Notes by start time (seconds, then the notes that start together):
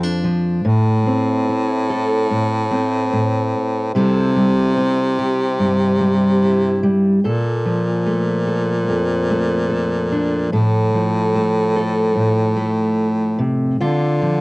Already playing: F2 F3 A3 F4
0.03 D4
0.24 F3
0.65 A2
1.07 C4
1.49 E4
1.90 A4
2.30 A2
2.71 C4
3.12 A2
3.94 C3 G3 C4 E4 A4
4.36 G3
4.77 C4
5.19 G4
5.59 G2
6.01 G3
6.42 E4
6.83 G3
7.23 A#2 A4
7.65 F3
8.06 A3
8.47 A4
8.89 F2
9.30 A3
9.70 A4
10.12 D4
10.52 A2 A4
10.94 F3
11.36 A3
11.76 A4
12.16 A2
12.57 A3
13.39 C3
13.80 D3 F4
14.22 F3